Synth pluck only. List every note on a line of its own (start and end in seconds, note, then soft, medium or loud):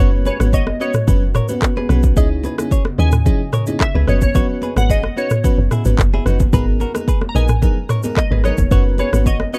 0.00 0.26 C#5 medium
0.27 0.54 C#5 medium
0.54 0.82 D#5 medium
0.81 1.86 C#5 medium
3.00 3.50 G#5 loud
3.81 4.09 E5 medium
4.09 4.15 C#5 medium
4.23 4.79 C#5 medium
4.78 4.91 F#5 loud
4.91 5.18 D#5 loud
5.18 6.22 C#5 medium
7.29 7.35 A#5 medium
7.36 8.20 G#5 loud
8.18 8.45 D#5 loud
8.45 8.99 C#5 medium
9.00 9.27 C#5 medium
9.27 9.54 D#5 medium
9.54 9.59 C#5 medium